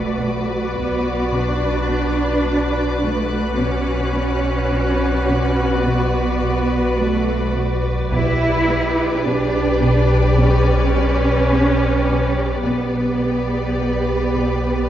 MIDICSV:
0, 0, Header, 1, 12, 480
1, 0, Start_track
1, 0, Key_signature, 2, "minor"
1, 0, Tempo, 1132075
1, 1524, Time_signature, 4, 2, 24, 8
1, 6314, End_track
2, 0, Start_track
2, 0, Title_t, "Violin section"
2, 0, Program_c, 0, 48
2, 0, Note_on_c, 0, 83, 28
2, 0, Note_on_c, 0, 86, 26
2, 556, Note_on_c, 0, 90, 28
2, 2707, Note_off_c, 0, 86, 0
2, 3183, Note_off_c, 0, 90, 0
2, 3185, Note_off_c, 0, 83, 0
2, 6314, End_track
3, 0, Start_track
3, 0, Title_t, "Violin section"
3, 0, Program_c, 1, 48
3, 0, Note_on_c, 1, 74, 39
3, 1510, Note_off_c, 1, 74, 0
3, 1521, Note_on_c, 1, 74, 37
3, 3425, Note_off_c, 1, 74, 0
3, 3442, Note_on_c, 1, 74, 50
3, 5346, Note_off_c, 1, 74, 0
3, 5354, Note_on_c, 1, 74, 38
3, 6314, Note_off_c, 1, 74, 0
3, 6314, End_track
4, 0, Start_track
4, 0, Title_t, "Synth texture"
4, 0, Program_c, 2, 99
4, 0, Note_on_c, 2, 66, 50
4, 0, Note_on_c, 2, 71, 44
4, 0, Note_on_c, 2, 74, 47
4, 1502, Note_off_c, 2, 74, 0
4, 1503, Note_off_c, 2, 66, 0
4, 1504, Note_off_c, 2, 71, 0
4, 1520, Note_on_c, 2, 86, 52
4, 1521, Note_on_c, 2, 71, 44
4, 1523, Note_on_c, 2, 66, 50
4, 3425, Note_off_c, 2, 86, 0
4, 3426, Note_off_c, 2, 66, 0
4, 3426, Note_off_c, 2, 71, 0
4, 3438, Note_on_c, 2, 71, 49
4, 3439, Note_on_c, 2, 67, 46
4, 3443, Note_on_c, 2, 86, 54
4, 5344, Note_off_c, 2, 71, 0
4, 5346, Note_off_c, 2, 86, 0
4, 5355, Note_off_c, 2, 67, 0
4, 5356, Note_on_c, 2, 74, 44
4, 5360, Note_on_c, 2, 67, 47
4, 5361, Note_on_c, 2, 71, 43
4, 6314, Note_off_c, 2, 67, 0
4, 6314, Note_off_c, 2, 71, 0
4, 6314, Note_off_c, 2, 74, 0
4, 6314, End_track
5, 0, Start_track
5, 0, Title_t, "Violin section"
5, 0, Program_c, 3, 48
5, 0, Note_on_c, 3, 71, 35
5, 1508, Note_off_c, 3, 71, 0
5, 1523, Note_on_c, 3, 71, 39
5, 3427, Note_off_c, 3, 71, 0
5, 3445, Note_on_c, 3, 71, 47
5, 5348, Note_off_c, 3, 71, 0
5, 5369, Note_on_c, 3, 71, 35
5, 6314, Note_off_c, 3, 71, 0
5, 6314, End_track
6, 0, Start_track
6, 0, Title_t, "Viola section"
6, 0, Program_c, 4, 48
6, 0, Note_on_c, 4, 66, 38
6, 1509, Note_off_c, 4, 66, 0
6, 1526, Note_on_c, 4, 66, 43
6, 3428, Note_off_c, 4, 66, 0
6, 3446, Note_on_c, 4, 67, 53
6, 5348, Note_off_c, 4, 67, 0
6, 5365, Note_on_c, 4, 67, 38
6, 6314, Note_off_c, 4, 67, 0
6, 6314, End_track
7, 0, Start_track
7, 0, Title_t, "Cello section"
7, 0, Program_c, 5, 48
7, 0, Note_on_c, 5, 57, 42
7, 324, Note_off_c, 5, 57, 0
7, 325, Note_on_c, 5, 59, 46
7, 560, Note_off_c, 5, 59, 0
7, 566, Note_on_c, 5, 62, 53
7, 1282, Note_on_c, 5, 57, 45
7, 1285, Note_off_c, 5, 62, 0
7, 1523, Note_off_c, 5, 57, 0
7, 1525, Note_on_c, 5, 61, 62
7, 2467, Note_off_c, 5, 61, 0
7, 2486, Note_on_c, 5, 59, 51
7, 2965, Note_off_c, 5, 59, 0
7, 2965, Note_on_c, 5, 57, 51
7, 3205, Note_off_c, 5, 57, 0
7, 3446, Note_on_c, 5, 64, 74
7, 3908, Note_off_c, 5, 64, 0
7, 3923, Note_on_c, 5, 62, 58
7, 4401, Note_on_c, 5, 61, 67
7, 4404, Note_off_c, 5, 62, 0
7, 5362, Note_off_c, 5, 61, 0
7, 5365, Note_on_c, 5, 59, 46
7, 6314, Note_off_c, 5, 59, 0
7, 6314, End_track
8, 0, Start_track
8, 0, Title_t, "Cello section"
8, 0, Program_c, 6, 48
8, 85, Note_on_c, 6, 47, 31
8, 229, Note_off_c, 6, 47, 0
8, 322, Note_on_c, 6, 47, 30
8, 467, Note_off_c, 6, 47, 0
8, 564, Note_on_c, 6, 47, 41
8, 708, Note_off_c, 6, 47, 0
8, 801, Note_on_c, 6, 47, 33
8, 946, Note_off_c, 6, 47, 0
8, 1042, Note_on_c, 6, 59, 32
8, 1187, Note_off_c, 6, 59, 0
8, 1284, Note_on_c, 6, 47, 31
8, 1428, Note_off_c, 6, 47, 0
8, 1521, Note_on_c, 6, 47, 50
8, 1666, Note_off_c, 6, 47, 0
8, 1762, Note_on_c, 6, 59, 36
8, 1907, Note_off_c, 6, 59, 0
8, 2004, Note_on_c, 6, 47, 32
8, 2148, Note_off_c, 6, 47, 0
8, 2243, Note_on_c, 6, 47, 35
8, 2387, Note_off_c, 6, 47, 0
8, 2484, Note_on_c, 6, 47, 52
8, 2628, Note_off_c, 6, 47, 0
8, 2726, Note_on_c, 6, 47, 40
8, 2870, Note_off_c, 6, 47, 0
8, 2966, Note_on_c, 6, 59, 43
8, 3109, Note_off_c, 6, 59, 0
8, 3204, Note_on_c, 6, 47, 38
8, 3348, Note_off_c, 6, 47, 0
8, 3446, Note_on_c, 6, 47, 55
8, 3589, Note_off_c, 6, 47, 0
8, 3683, Note_on_c, 6, 59, 41
8, 3827, Note_off_c, 6, 59, 0
8, 3925, Note_on_c, 6, 47, 39
8, 4069, Note_off_c, 6, 47, 0
8, 4167, Note_on_c, 6, 47, 45
8, 4310, Note_off_c, 6, 47, 0
8, 4401, Note_on_c, 6, 47, 57
8, 4546, Note_off_c, 6, 47, 0
8, 4644, Note_on_c, 6, 47, 41
8, 4788, Note_off_c, 6, 47, 0
8, 4886, Note_on_c, 6, 59, 39
8, 5029, Note_off_c, 6, 59, 0
8, 5130, Note_on_c, 6, 47, 32
8, 5272, Note_off_c, 6, 47, 0
8, 5369, Note_on_c, 6, 47, 41
8, 5512, Note_off_c, 6, 47, 0
8, 5607, Note_on_c, 6, 59, 29
8, 5750, Note_off_c, 6, 59, 0
8, 5850, Note_on_c, 6, 47, 29
8, 5992, Note_off_c, 6, 47, 0
8, 6087, Note_on_c, 6, 47, 27
8, 6230, Note_off_c, 6, 47, 0
8, 6314, End_track
9, 0, Start_track
9, 0, Title_t, "Double bass section"
9, 0, Program_c, 7, 48
9, 0, Note_on_c, 7, 35, 31
9, 1507, Note_off_c, 7, 35, 0
9, 1525, Note_on_c, 7, 35, 39
9, 3427, Note_off_c, 7, 35, 0
9, 3447, Note_on_c, 7, 35, 47
9, 5349, Note_off_c, 7, 35, 0
9, 5363, Note_on_c, 7, 35, 35
9, 6314, Note_off_c, 7, 35, 0
9, 6314, End_track
10, 0, Start_track
10, 0, Title_t, "Synth drone"
10, 0, Program_c, 8, 95
10, 0, Note_on_c, 8, 35, 64
10, 1507, Note_off_c, 8, 35, 0
10, 1522, Note_on_c, 8, 35, 61
10, 3426, Note_off_c, 8, 35, 0
10, 3450, Note_on_c, 8, 35, 61
10, 5350, Note_off_c, 8, 35, 0
10, 5369, Note_on_c, 8, 35, 64
10, 6314, Note_off_c, 8, 35, 0
10, 6314, End_track
11, 0, Start_track
11, 0, Title_t, "Sub drop"
11, 0, Program_c, 10, 103
11, 0, Note_on_c, 10, 60, 33
11, 1524, Note_off_c, 10, 60, 0
11, 6314, End_track
12, 0, Start_track
12, 0, Title_t, "Taiko and cinematic ensemble drums"
12, 324, Note_on_c, 9, 41, 22
12, 366, Note_off_c, 9, 41, 0
12, 3443, Note_on_c, 9, 41, 51
12, 3485, Note_off_c, 9, 41, 0
12, 6314, End_track
0, 0, End_of_file